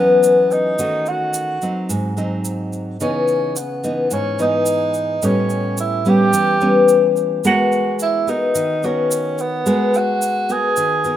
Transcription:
Already playing: E3 F#3 B3 C#4
0.23 shaker
0.51 D#4, shaker
0.79 D#3 A3 C#4 F#4, shaker
1.06 F#4, shaker
1.34 shaker
1.62 F#3 C4 D#4, shaker
1.89 G#2, shaker
2.17 F#3 C4 D#4, shaker
2.45 shaker
2.73 shaker
3.00 C#3 E3 B3 C#4 D#4, shaker
3.28 shaker
3.56 B3, shaker
3.84 E3 B3 D#4, shaker
4.11 G#2 C#4, shaker
4.39 E3 B3 D#4, shaker
4.66 shaker
4.94 shaker
5.22 A2 G3 B3 C#4, shaker
5.50 shaker
5.77 E4, shaker
6.05 G3 B3 C#4 G4, shaker
6.33 E3, shaker
6.61 G3 B3 C#4, shaker
6.88 shaker
7.16 shaker
7.44 G#3 B3 F#4 A#4, shaker
7.72 shaker
7.99 E4, shaker
8.27 B3 D#4 F#4 A#4, shaker
8.55 D#3, shaker
8.83 B3 C#4 F#4 A#4, shaker
9.11 shaker
9.38 B3, shaker
9.66 G#3 B3 F#4 A#4, shaker
9.94 F#4, shaker
10.22 shaker
10.49 B3 F#4 G#4 A#4, shaker
10.76 D#3, shaker
11.04 B3 F#4 A#4, shaker

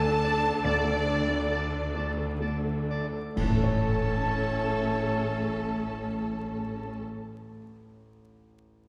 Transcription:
Already playing: D2 D3 A3 D4 A4 D5 A5
0.04 A4
0.24 D5 A5
0.44 A4
0.64 D2 D4 D5 A5
0.85 A3
1.06 A4 D5 A5
1.28 A3
1.49 A4 D5 A5
1.72 D5
1.95 A3 D5 A5
2.17 A4
2.41 A3 D5 A5
2.64 A4
2.88 D5 A5
3.13 A4
3.36 A1 A2 A3 C#4 A4 C#5 A5, concert bass drum, crash
3.43 A2 A3
3.50 A3 A4
3.57 A4 C#5
3.64 C#5 A5
3.71 A5

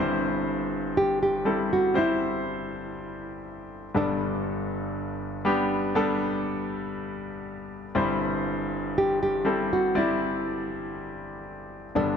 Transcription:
Already playing: G1 G2 G3 C4 E4 C5
0.97 G4
1.23 G4
1.45 G3 C4 E4 A4
1.73 F#4
1.94 G3 C4 E4 C5
1.98 E4
3.94 G1 G2 G3 B3 D4 A4
5.45 G3 B3 D4 G4
5.95 G3 B3 D4 A4
7.95 G1 G2 G3 C4 E4 C5
8.98 G4
9.23 G4
9.45 G3 C4 E4 A4
9.73 F#4
9.95 G3 C4 E4 D5
11.95 G1 G2 G3 B3 D4 A4

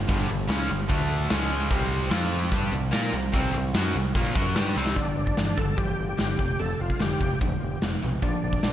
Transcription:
0.08 G1 G2 D3 G3, kick, open hi-hat
0.29 G1 G2 D3
0.48 C#2 C#3 G#3 C#4, snare, open hi-hat
0.69 G1 G2 D3
0.89 D2 D3 A3 D4, kick, open hi-hat
1.30 C#2 C#3 G#3 C#4, snare, open hi-hat
1.70 C2 C3 G3 C4, kick, open hi-hat
2.10 F2 F3 C4 F4, snare, open hi-hat
2.51 G2 G3 D4 G4, kick, open hi-hat
2.71 C2 C3 G3
2.91 A#2 A#3 F4 A#4, snare, open hi-hat
3.12 C2 C3 G3
3.32 C2 C3 G3 C4, kick, open hi-hat
3.53 C2 C3 G3
3.74 F#2 F#3 C#4 F#4, snare, open hi-hat
3.95 C2 C3 G3
4.15 A#1 A#2 F3 A#3, kick, open hi-hat
4.35 F#2 F#3 C#4 F#4, kick
4.55 G2 G3 D4 G4, snare, open hi-hat
4.76 C2 C3 G3 C4, snare
4.86 snare
4.96 G1 G2 D3 D4, kick, open hi-hat
5.17 G1 D4
5.27 kick
5.37 G1 G2 E3, snare, open hi-hat
5.57 G1 G2 D3 A4, kick
5.77 G1 G2 E3 G4, kick, open hi-hat
5.99 G1
6.09 G4
6.18 G1 G2 D3, snare, open hi-hat
6.39 F1 F2 C3, kick
6.59 F1 F2 C3 A4, open hi-hat
6.80 F1 F4
6.90 kick
6.99 F1 F2 D3 G4, snare, open hi-hat
7.21 F1 F2 C3, kick
7.41 F1 F2 D3, kick, open hi-hat
7.63 F1
7.82 F1 F2 C3, snare, open hi-hat
8.03 B1 F2 C3
8.22 A#1 A#2 F3 D4, kick, open hi-hat
8.44 A#1 D4
8.53 kick
8.63 A#1 A#2 G3, snare, open hi-hat

